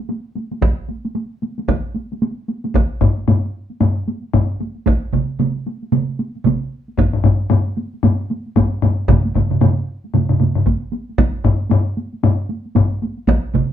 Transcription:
0.09 taiko high
0.35 taiko high
0.51 taiko high
0.62 taiko, taiko high
0.89 taiko high
1.05 taiko high
1.15 taiko high
1.42 taiko high
1.58 taiko high
1.68 taiko, taiko high
1.95 taiko high
2.12 taiko high
2.22 taiko high
2.48 taiko high
2.64 taiko high
2.74 taiko, taiko high
3.01 taiko, taiko low-mid, taiko high
3.17 taiko high
3.28 taiko low-mid, taiko high
3.44 taiko high
3.70 taiko high
3.80 taiko low-mid, taiko high
3.97 taiko high
4.08 taiko high
4.23 taiko high
4.34 taiko, taiko low-mid, taiko high
4.60 taiko high
4.75 taiko high
4.86 taiko, taiko high
5.13 taiko, taiko mid, taiko high
5.29 taiko high
5.39 taiko mid, taiko high
5.56 taiko high
5.67 taiko high
5.82 taiko high
5.92 taiko mid, taiko high
6.08 taiko high
6.19 taiko high
6.35 taiko high
6.44 taiko, taiko mid, taiko high
6.62 taiko high
6.88 taiko high
6.97 taiko, taiko low-mid, taiko high
7.13 taiko low-mid
7.24 taiko, taiko low-mid, taiko high
7.40 taiko high
7.50 taiko low-mid, taiko high
7.67 taiko high
7.77 taiko high
7.94 taiko high
8.03 taiko low-mid, taiko high
8.19 taiko high
8.30 taiko high
8.46 taiko high
8.56 taiko, taiko low-mid, taiko high
8.73 taiko high
8.82 taiko low-mid, taiko high
8.99 taiko high
9.08 taiko, taiko low-mid, taiko mid, taiko high
9.25 taiko high
9.34 taiko, taiko low-mid, taiko mid, taiko high
9.50 taiko low-mid, taiko mid
9.61 taiko low-mid, taiko mid, taiko high
9.78 taiko high
10.04 taiko high
10.14 taiko low-mid, taiko mid, taiko high
10.29 taiko low-mid, taiko mid, taiko high
10.40 taiko low-mid, taiko mid, taiko high
10.55 taiko low-mid, taiko mid
10.66 taiko, taiko high
10.82 taiko high
10.93 taiko high
11.09 taiko high
11.18 taiko, taiko high
11.44 taiko, taiko low-mid, taiko high
11.61 taiko high
11.70 taiko low-mid, taiko high
11.86 taiko high
11.97 taiko high
12.13 taiko high
12.23 taiko low-mid, taiko high
12.50 taiko high
12.65 taiko high
12.75 taiko, taiko low-mid, taiko high
12.91 taiko high
13.02 taiko high
13.18 taiko high
13.27 taiko, taiko high
13.54 taiko, taiko mid, taiko high

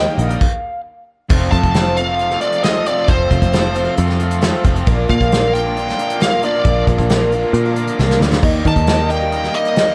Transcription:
Already playing: D#3 A#3 D#4 G4 A#4 G5 D#6
0.18 A#1 D#3 G3 D#4 G4 A#4, closed hi-hat
0.29 D#4 G4 A#4 F5, closed hi-hat
0.41 kick, crash
1.29 F1 F2 C3 F3 A3 C4 F4 A4 F5 C6, kick, crash
1.52 F2 F3 A3 C4 F4 A4 A5, kick, closed hi-hat
1.63 F1, kick, closed hi-hat
1.74 F2 F3 A3 C4 F4 A4, snare, closed hi-hat
1.97 F2 C3 F3 A3 C4 F4 A4 F5, closed hi-hat
2.08 A3 C4 F4 A4
2.19 F3 A3 C4, closed hi-hat
2.23 F4
2.31 A3 C4 F4 A4, snare
2.41 C4 F4 D5, closed hi-hat
2.45 F3 A3
2.52 closed hi-hat
2.63 F2 F3 A3 C4 F4 A4 D#5, snare, closed hi-hat
2.86 F3 A3 C4 F4 A4 D5, closed hi-hat
2.90 F2 C3
2.98 A3 C4 F4 A4
3.08 F1 F2 C3 F3 A3 C4 F4 A4 C5, kick, closed hi-hat
3.12 C4 F4
3.30 F1 A3 C4 F4 A4, kick, closed hi-hat
3.34 F3 A3
3.42 F1, kick, closed hi-hat
3.52 F2 F3 A3 C4 F4 A4, snare, closed hi-hat
3.74 F3 A3 C4 F4 A4, closed hi-hat
3.78 F2 C3
3.84 A3 C4 F4 A4
3.97 F2 F3 A3 C4 F4, closed hi-hat
4.07 A3 C4 F4 A4, snare
4.20 F3 A3 C4 F4, closed hi-hat
4.31 closed hi-hat
4.41 F2 F3 A3 C4 F4 A4, snare, closed hi-hat
4.47 F4
4.63 F1 C3 F3 A3 C4 F4 A4, kick, closed hi-hat
4.68 F2
4.75 A3 C4 F4 A4, closed hi-hat
4.86 A#1 A#2 D3 A#3 D4 F4 A#4 D6, kick, closed hi-hat
5.08 A#2 A#3 D4 F4 A#4 F5, kick, closed hi-hat
5.13 A#3
5.21 A#1, kick, closed hi-hat
5.32 A#2 D3 A#3 D4 F4 A#4, snare, closed hi-hat
5.53 A#2 D3 A#3 D4 F4 A#4 G5, closed hi-hat
5.66 D4 F4 A#4
5.76 D3 A#3 D4 F4, closed hi-hat
5.88 D4 F4 A#4, snare
5.98 A#3 D4 F4, closed hi-hat
6.10 closed hi-hat
6.20 A#2 D3 A#3 D4 F4 A#4 F5, snare, closed hi-hat
6.42 A#2 D3 A#3 D4 F4 A#4 D5, closed hi-hat
6.55 D4 F4 A#4
6.65 A#1 A#2 D3 A#3 D4 F4 A#4, kick, closed hi-hat
6.87 A#1 A#3 D4 F4 A#4, kick, closed hi-hat
6.98 A#1, kick, closed hi-hat
7.08 A#2 D3 A#3 D4 F4 A#4, snare, closed hi-hat
7.32 A#2 D3 A#3 D4 F4 A#4, closed hi-hat
7.43 D4 F4 A#4
7.53 A#2 D3 A#3 D4 F4, closed hi-hat
7.65 D4 F4 A#4
7.75 A#3 D4 F4, closed hi-hat
7.87 closed hi-hat
7.98 C2 A#2 D3 A#3 D4 F4 A#4, snare
8.11 snare
8.20 D2 A#2 D3 A#3 D4 F4 A#4, snare
8.31 D4 F4 A#4, snare
8.42 D#2 D#3 G3 A#3 D#4 G4 A#4 G5 D#6, kick, crash
8.65 D#3 A#3 D#4 G4 A#4 A5, kick, closed hi-hat
8.76 D#2, kick, closed hi-hat
8.86 D#3 G3 A#3 D#4 G4 A#4, snare, closed hi-hat
9.09 D#3 G3 A#3 D#4 G4 A#4 G5, closed hi-hat
9.21 D#4 G4 A#4
9.31 G3 A#3 D#4 G4, closed hi-hat
9.43 D#4 G4 A#4, snare
9.53 A#3 D#4 G4 D#5, closed hi-hat
9.65 closed hi-hat
9.76 D#3 G3 A#3 D#4 G4 A#4, snare, closed hi-hat

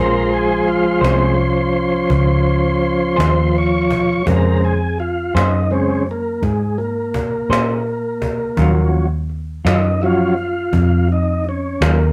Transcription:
Already playing: A#1 F3 G#3 A#3 C#4 G#4 C5
0.00 A#4
0.30 G#4, cajon slap
0.66 F4, cajon slap
1.01 C2 G#3 A#3 C4 C#4 G#4 C5, cajon slap
1.39 cajon slap
1.74 cajon slap
2.10 C#2, cajon bass
2.46 cajon slap
2.82 cajon slap
3.16 D#2 A#3 C#4 G#4 C5, cajon slap
3.53 C5, cajon slap
3.58 C#5
3.91 cajon bass
4.26 F2 C#3 G#3 C4 A#4, cajon bass
4.63 G#4, cajon slap
4.99 F4, cajon slap
5.35 F#2 A#3 C#4 D#4 G#4 C5, cajon slap
5.70 C#3 G#3 C4 C#4, cajon slap
6.07 cajon slap
6.09 A#3, cajon slap
6.42 G#2 G#3, cajon bass, cajon slap
6.78 A#3, cajon slap
7.14 cajon bass
7.50 A#2 A#3 C#4 G#4 C5, cajon slap
7.87 cajon slap
8.22 cajon bass
8.57 D#2 D#3 F3 F#3 C#4 F4, cajon bass
8.61 F#3 C#4
8.93 cajon slap
9.29 cajon slap
9.65 F#2 D#3 F#3 C#4 D#4 F4, cajon slap
10.01 F3 F#3 C#4 E4, cajon slap
10.06 F4
10.37 cajon slap
10.39 cajon slap
10.73 F2, cajon bass
11.08 D#4, cajon slap
11.44 cajon slap
11.49 C#4
11.81 D#2 D#3 F#3 A#3 C#4 F4, cajon slap

